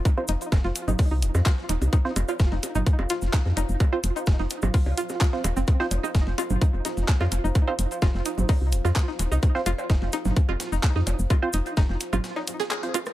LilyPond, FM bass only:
\new Staff \with { instrumentName = "FM bass" } { \clef bass \time 4/4 \key c \minor \tempo 4 = 128 r8 f,,16 r16 f,,16 f,,16 r16 g,,16 r16 c,16 f,,16 f,16 r8 ees,,16 c,16 | r8 f,,16 r16 f,,16 f,,16 r16 g,,16 r16 f,,16 r16 f,,16 r16 f,16 f,,16 f,,16 | r8 f,,16 r16 f,,16 f,,16 r16 g,,16 r16 c,16 r4 ees,,16 f,,16 | r8 f,,16 r16 f,,16 f,,16 r16 g,,16 r16 f,,16 r16 f,,16 r16 f,16 f,,16 f,,16 |
r8 f,,16 r16 f,,16 f,,16 r16 g,,16 r16 c,16 f,,16 f,16 r8 ees,,16 c,16 | r8 f,,16 r16 f,,16 f,,16 r16 g,,16 r16 f,,16 r16 f,,16 r16 f,16 f,,16 f,,16 | r8 f,,16 r16 f,,16 f,,16 r16 g,,16 r2 | }